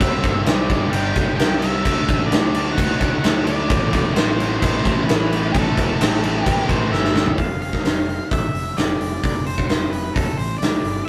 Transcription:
Already playing: E5
0.00 C2 C3 G3 C4 D4 E4 C5, kick, crash
0.23 G1 C3 G3 C4, kick, crash
0.45 C2 C3 G3 C4 D5, snare, crash
0.69 G1 G2 D3 G3 G4 A4 B4, kick, crash
0.91 G1 G2 D3 G3 G5, crash
1.15 G1 G2 D3 G3, kick, crash
1.37 C2 G2 D3 G3 G5, snare, crash
1.59 G2 D3 E5, crash
1.63 G3
1.84 D2 D3 A3 D4 E4 F#4 D5, kick, crash
2.08 A1 D3 A3 D4, kick, crash
2.26 D5
2.31 D2 D3 A3 D4, snare, crash
2.53 D3 A3 D4, crash
2.72 D3 F#5
2.77 D2 A3 D4, kick, crash
2.99 D2 D3 A3 D4, kick, crash
3.18 F#5
3.23 D2 D3 A3 D4, snare, crash
3.44 D3 A3 D4 D5, crash
3.69 A1 A2 E3 A3 C4 A4, kick, crash
3.92 E1 A2 E3 A3, kick, crash
4.14 A1 A2 E3 A3 C5, snare, crash
4.38 A2 E3 A3, crash
4.58 A2 E3 C5
4.62 A1 A3, kick, crash
4.84 A1 A2 E3 A3, kick, crash
5.04 A2 E3 A3 B4
5.09 A1, snare, crash
5.31 A2 E3 A3, crash
5.52 A1 A2 E3 A3 A4, kick, crash
5.76 E1 A2 E3 A3, kick, crash
6.00 A1 A2 E3 A3, snare, crash
6.23 A2 E3 A3, crash
6.44 A1 A2 E3 A3 G4, kick, crash
6.68 A1 A2 E3 A3 C5, kick, crash
6.90 G1 A2 E3 A3 E5, snare
7.04 snare
7.14 A2 E3 A3, snare
7.26 floor tom
7.38 F1 F5, kick, open hi-hat
7.62 F5, open hi-hat
7.73 kick, snare
7.85 F1, snare, open hi-hat
8.09 open hi-hat
8.31 A1 E5, kick, open hi-hat
8.53 F1, open hi-hat
8.77 F1 D5, snare, open hi-hat
9.00 F1, open hi-hat
9.24 F1 D5, kick, open hi-hat
9.46 C5, open hi-hat
9.58 kick
9.68 F1 C5, snare, open hi-hat
9.90 F1 B4, open hi-hat
10.14 F1 A4, kick, open hi-hat
10.37 A1 C5, open hi-hat
10.58 D2 D5, open hi-hat
10.63 snare
10.83 G1, open hi-hat
11.05 E5

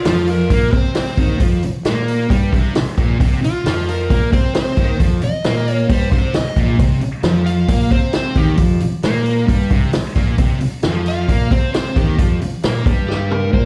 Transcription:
Already playing: F4
0.05 F2 F3, snare, open hi-hat
0.27 A#4, open hi-hat
0.50 A#2 A#3, kick, open hi-hat
0.73 C3 C4 C5, kick, open hi-hat
0.95 C5, snare, open hi-hat
1.17 D#2 D#3, kick, open hi-hat
1.40 F2 F3, kick, open hi-hat
1.63 muted fingered electric bass stroke, muted distorted electric guitar stroke, open hi-hat
1.85 A#2 A#3, snare, open hi-hat
2.08 open hi-hat
2.30 G2 G3, kick, open hi-hat
2.53 C2 C3, kick, open hi-hat
2.75 muted fingered electric bass stroke, muted distorted electric guitar stroke, snare, open hi-hat
2.98 A#1 A#2, kick, open hi-hat
3.20 C2 C3, kick, open hi-hat
3.42 F4, muted distorted electric guitar stroke, muted fingered electric bass stroke, open hi-hat
3.65 F2 F3, snare, open hi-hat
3.88 A#4, open hi-hat
4.09 A#2 A#3, kick, open hi-hat
4.32 C3 C4 C5, kick, open hi-hat
4.54 C5, snare, open hi-hat
4.77 D#2 D#3, kick, open hi-hat
5.00 F2 F3, kick, open hi-hat
5.22 D#5, muted distorted electric guitar stroke, muted fingered electric bass stroke, open hi-hat
5.44 A#2 A#3, snare, open hi-hat
5.68 open hi-hat
5.73 C#5
5.90 G2 G3 C5, kick, open hi-hat
6.12 C2 C3 C5, kick, open hi-hat
6.34 D#5, muted distorted electric guitar stroke, muted fingered electric bass stroke, snare, open hi-hat
6.56 A#1 A#2, kick, open hi-hat
6.79 C2 C3, kick, open hi-hat
7.01 muted fingered electric bass stroke, muted distorted electric guitar stroke, open hi-hat
7.23 F2 F3, snare, open hi-hat
7.46 F5, open hi-hat
7.68 A#2 A#3, kick, open hi-hat
7.91 C3 C4 C5, kick, open hi-hat
8.13 C5, snare, open hi-hat
8.35 D#2 D#3 G4, kick, open hi-hat
8.57 F2 F3, kick, open hi-hat
8.80 muted distorted electric guitar stroke, muted fingered electric bass stroke, open hi-hat
9.03 A#2 A#3, snare, open hi-hat
9.26 open hi-hat
9.48 G2 G3, kick, open hi-hat
9.70 C2 C3, kick, open hi-hat
9.93 muted distorted electric guitar stroke, muted fingered electric bass stroke, snare, open hi-hat
10.15 A#1 A#2, kick, open hi-hat
10.38 C2 C3, kick, open hi-hat
10.61 muted distorted electric guitar stroke, muted fingered electric bass stroke, open hi-hat
10.83 F2 F3, snare, open hi-hat
11.06 F5, open hi-hat
11.29 A#2 A#3, kick, open hi-hat
11.51 C3 C4 C5, kick, open hi-hat
11.74 C5, snare, open hi-hat
11.96 D#2 D#3 G4, kick, open hi-hat
12.19 F2 F3, kick, open hi-hat
12.41 muted distorted electric guitar stroke, muted fingered electric bass stroke, open hi-hat
12.63 A#2 A#3, snare, open hi-hat
12.86 G2 G3, kick, open hi-hat
13.09 G4, snare
13.31 A#4, mid tom
13.53 A#2 A#3 C5, kick

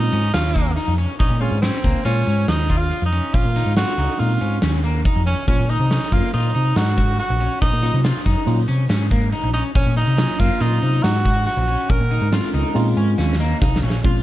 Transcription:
Already playing: G#3 C4 C#4 D#4 F4
0.13 G#2 C#4, closed hi-hat
0.34 D#2 C#4 F4, snare, closed hi-hat
0.55 A#3, kick, closed hi-hat
0.76 D#4, snare, closed hi-hat
0.88 F2
0.98 C#4, closed hi-hat
1.19 A#1 C#4 D#4, kick, closed hi-hat
1.30 A#2
1.40 G#3 C4 C#4 F4 G#4, closed hi-hat
1.51 G#2
1.62 C4 C#4, snare, closed hi-hat
1.84 C#2 A#3, kick, snare, closed hi-hat
2.04 A#2 G#3 C#4 F4 C5, snare, closed hi-hat
2.27 G#2 C#4, closed hi-hat
2.48 D#2 D#4, snare, closed hi-hat
2.70 F4, kick, closed hi-hat
2.77 F4
2.91 closed hi-hat
3.02 F2 D#4
3.13 C#4, closed hi-hat
3.33 A#1 F4, kick, closed hi-hat
3.45 A#2
3.56 D#4, snare, closed hi-hat
3.66 G#2
3.76 G#3 C4 C#4 F4 F#4, snare, closed hi-hat
3.98 C#2 D#4, closed hi-hat
4.19 A#2 G#3 C4 C#4 D#4 F4, closed hi-hat
4.41 G#2 C#4, closed hi-hat
4.62 D#2 C#4, snare, closed hi-hat
4.84 A#3, closed hi-hat
5.05 D#4, kick, closed hi-hat
5.16 F2
5.26 C#4, closed hi-hat
5.47 A#1 F#3 A#3 C#4 F4, kick, closed hi-hat
5.59 A#2
5.69 D#4, closed hi-hat
5.80 C3
5.91 C#4, snare, closed hi-hat
6.11 F#2 F#3 A#3 C#4 F4, kick, closed hi-hat
6.34 A#2 D#4 F4, closed hi-hat
6.55 C3 D#4, closed hi-hat
6.76 G#2 F#4, snare, closed hi-hat
6.98 F#4, kick, snare, closed hi-hat
7.19 F#4, closed hi-hat
7.30 A#1
7.40 C#4, closed hi-hat
7.62 A#1 D#4, kick, closed hi-hat
7.73 A#2
7.81 F#3 A#3 C#4 D#4 F4, snare, closed hi-hat
7.94 C3
8.04 F4, snare, closed hi-hat
8.26 F#2 D#4, kick, snare, closed hi-hat
8.46 A#2 F#3 A#3 C#4 F4, closed hi-hat
8.68 C3 C#4, closed hi-hat
8.89 G#2 C#4, snare, closed hi-hat
9.11 A#3, kick, snare, closed hi-hat
9.32 D#4, closed hi-hat
9.43 A#1
9.53 C#4 D#4, closed hi-hat
9.75 A#1 C#4, kick, closed hi-hat
9.87 A#2
9.96 D#4, snare, closed hi-hat
10.07 C3
10.17 F#3 A#3 C#4 F4, snare, closed hi-hat
10.39 F#2 A#3 F4, kick, closed hi-hat
10.60 A#2 F#3 A#3 C#4 D#4 F4, snare, closed hi-hat
10.82 C3 D#4, closed hi-hat
11.03 G#2 F#4, snare, closed hi-hat
11.25 F#4, kick, snare, closed hi-hat
11.47 F#4, snare, closed hi-hat
11.57 A#1
11.68 C#4, closed hi-hat
11.90 A#1 A#4, kick, closed hi-hat
12.00 A#2
12.11 D#4, closed hi-hat
12.22 G#2
12.31 G#3 C4 C#4 F4, snare, closed hi-hat
12.54 C#2 D#4, closed hi-hat
12.74 A#2 G#3 C4 C#4 F4, closed hi-hat
12.97 G#2 C#4 G#5, closed hi-hat
13.18 D#2 C#4 F5, snare
13.33 snare
13.40 A#3 D#5
13.62 C2 D#4 F5, kick, snare
13.76 snare
13.83 A#1 C#4
13.90 snare
14.04 A#1 G#3 C4 C#4 F4, kick, closed hi-hat

